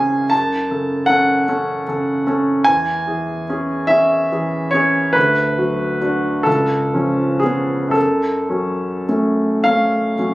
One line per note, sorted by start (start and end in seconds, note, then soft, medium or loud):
0.00 0.25 C#2 soft
0.00 0.34 C#3 soft
0.00 0.34 C#4 soft
0.00 0.34 G#4 soft
0.00 0.31 G#5 medium
0.30 2.64 F#2 medium
0.30 1.08 A5 medium
0.71 1.05 C#3 soft
0.71 1.05 A4 soft
1.06 1.44 C#4 soft
1.06 1.44 A4 soft
1.06 2.66 F#5 medium
1.48 1.83 C#4 soft
1.48 1.84 A4 soft
1.88 2.23 C#3 soft
1.88 2.24 A4 soft
2.27 2.63 C#4 soft
2.27 2.63 A4 soft
2.64 5.12 E2 soft
2.64 3.89 G#5 medium
3.08 3.44 E3 soft
3.08 3.44 G#4 soft
3.50 3.87 C#4 soft
3.50 3.87 G#4 soft
3.87 4.27 C#4 soft
3.87 4.28 G#4 soft
3.87 4.72 E5 medium
4.32 4.69 E3 soft
4.32 4.70 G#4 soft
4.71 5.12 C#4 soft
4.71 5.12 G#4 soft
4.71 5.14 C#5 medium
5.13 6.42 D2 soft
5.13 6.45 B4 medium
5.58 5.97 F#3 soft
5.58 5.97 F#4 soft
6.01 6.42 D4 soft
6.01 6.42 F#4 soft
6.43 7.91 C#2 soft
6.43 7.42 A4 medium
6.94 7.39 F3 soft
6.94 7.40 C#4 soft
7.40 7.91 B3 soft
7.40 7.93 G#4 medium
7.44 7.91 C#4 soft
7.88 10.34 F#2 soft
7.88 9.65 A4 medium
8.50 9.05 F#3 soft
8.50 9.05 C#4 soft
9.09 9.62 A3 soft
9.09 9.62 C#4 soft
9.64 10.14 A3 soft
9.64 10.14 C#4 soft
9.64 10.34 F5 medium
10.18 10.34 F#3 soft
10.18 10.34 C#4 soft